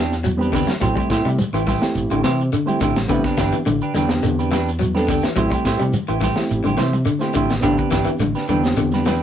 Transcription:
Already playing: E2 E3 C4 D4 G4
0.12 snare, shekere
0.24 F#3, closed hi-hat, high conga, shekere
0.37 B3 C4 D4 G4 B4, high conga
0.41 D4 G4, shekere
0.52 D3 C4 D4 G4 B4, kick, open hi-hat, low conga, shekere
0.67 E3, snare, high conga, shekere
0.80 A1 F#3 A3 C4 E4 G4 C5, muted clean electric guitar stroke, kick, closed hi-hat, shekere
0.96 G3 E4 G4 C5, kick, shekere
1.10 A2 A3 E4 G4 C5, kick, snare, closed hi-hat, shekere
1.25 C3 G3, shekere
1.38 muted fingered electric bass stroke, closed hi-hat, high conga, low conga, shekere
1.53 A1 E3 E4 G4 C5, closed hi-hat, shekere
1.67 E3 A3 E4 G4 C5, kick, snare, open hi-hat, high conga, low conga, shekere
1.80 A3 C4 E4 G4, snare, shekere
1.95 A1, closed hi-hat, shekere
2.11 A1 D3 E4 G4 C5, closed hi-hat, shekere
2.23 C3 E3 A3 E4 G4 C5, snare, closed hi-hat, high conga, shekere
2.41 shekere
2.53 D3, closed hi-hat, shekere
2.66 A3 C4 E4 G4 C5, closed hi-hat, high conga, shekere
2.81 A1 D3 A3 E4 G4 C5, kick, closed hi-hat, low conga, shekere
2.96 snare, high conga, shekere
3.08 A1 D3 B3 C4 D4 G4 B4, muted clean electric guitar stroke, kick, closed hi-hat, shekere
3.24 D4 G4 B4, kick, snare, closed hi-hat, shekere
3.38 G1 E3 C4 D4 G4 B4, kick, snare, closed hi-hat, shekere
3.53 E3, shekere
3.66 A1 D3, closed hi-hat, high conga, low conga, shekere
3.82 D4 G4 B4, closed hi-hat, shekere
3.94 E2 D3 C4 D4 G4 B4, snare, closed hi-hat, high conga, low conga, shekere
4.08 B3 C4 D4 G4, snare, closed hi-hat, shekere
4.23 E2 D3, closed hi-hat, shekere
4.39 D4 G4 B4, closed hi-hat, shekere
4.51 E3 C4 D4 G4 B4, snare, closed hi-hat, high conga, shekere
4.68 shekere
4.79 F#3, closed hi-hat, high conga, shekere
4.94 B3 C4 D4 G4 A4 B4, snare, high conga, shekere
5.08 D3 C4 D4 G4, kick, open hi-hat, low conga, shekere
5.23 E3, snare, shekere
5.36 A1 F#3 A3 C4 E4 G4 C5, kick, closed hi-hat, shekere
5.50 G3 E4 G4 C5, kick, shekere
5.65 A2 A3 E4 G4 C5, kick, snare, closed hi-hat, shekere
5.79 C3 G3, shekere
5.93 muted fingered electric bass stroke, closed hi-hat, high conga, low conga, shekere
6.08 A1 E3 E4 G4 C5, closed hi-hat, shekere
6.21 E3 A3 G4 C5, muted clean electric guitar stroke, kick, snare, open hi-hat, high conga, low conga, shekere
6.36 A3 C4 E4 G4, snare, shekere
6.49 A1, closed hi-hat, shekere
6.64 A1 D3 E4 G4 C5, closed hi-hat, high conga, shekere
6.77 C3 E3 A3 E4 C5, snare, closed hi-hat, high conga, shekere
6.93 high conga, shekere
7.06 D3, closed hi-hat, shekere
7.19 A3 C4 E4 G4 C5, snare, closed hi-hat, shekere
7.34 A1 D3 A3 E4 G4 C5, kick, closed hi-hat, shekere
7.50 snare, low conga, shekere
7.60 D3 B3 C4 D4 G4 B4, shekere
7.64 A1, kick, closed hi-hat
7.77 D4 G4 B4, kick, closed hi-hat, shekere
7.91 G1 E3 C4 D4 G4 B4, kick, snare, closed hi-hat, shekere
8.05 E3, shekere
8.19 A1 D3, closed hi-hat, high conga, low conga, shekere
8.35 D4 G4 B4, snare, closed hi-hat, shekere
8.48 E2 D3 C4 D4 G4 B4, closed hi-hat, high conga, low conga, shekere
8.63 B3 C4 D4 G4, snare, closed hi-hat, shekere
8.77 E2 D3, closed hi-hat, shekere
8.92 D4 G4 B4, snare, closed hi-hat, high conga, shekere
9.06 E3 C4 D4 G4 B4, snare, closed hi-hat, high conga, shekere

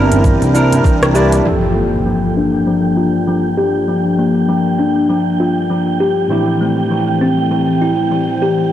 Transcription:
Already playing: G1 E3 G3 A#3 C4 D4 E4 G4 A#4 G5
0.11 closed hi-hat, djembe slap, djembe bass, cabasa
0.24 E3, kick, cabasa
0.41 C2, closed hi-hat, djembe tone, cabasa
0.54 D4 E4 A#4, cabasa
0.72 closed hi-hat, djembe tone, cabasa
0.84 E3, kick, cabasa
1.02 C2, cross-stick, closed hi-hat, djembe tone, cabasa
1.14 D4 E4 G4 D5, cabasa
1.32 closed hi-hat, cabasa
1.44 G2 F3 A#3 F4 A4 G5, impact, cabasa
1.76 A#3, cabasa
1.93 cabasa
2.06 F3, cabasa
2.36 D4, cabasa
2.54 D4, cabasa
2.66 F3, cabasa
2.97 F4, cabasa
3.14 cabasa
3.27 F3, cabasa
3.45 cabasa
3.57 G4, cabasa
3.75 cabasa
3.88 F3, cabasa
4.18 A#3, cabasa
4.36 cabasa
4.48 F3, cabasa
4.79 D4, cabasa
4.97 cabasa
5.09 F3, cabasa
5.40 F4, cabasa
5.57 cabasa
5.70 F3, cabasa
5.88 cabasa
6.00 G4, cabasa
6.18 cabasa
6.28 A2 E3 C4 E4 G4, cabasa
6.61 A3, cabasa
6.78 cabasa
6.91 E3, cabasa
6.97 A3 C4
7.21 C4, cabasa
7.39 cabasa
7.51 E3, cabasa
7.81 E4, cabasa
7.99 cabasa
8.12 E3, cabasa
8.29 cabasa
8.42 G4, cabasa
8.59 cabasa

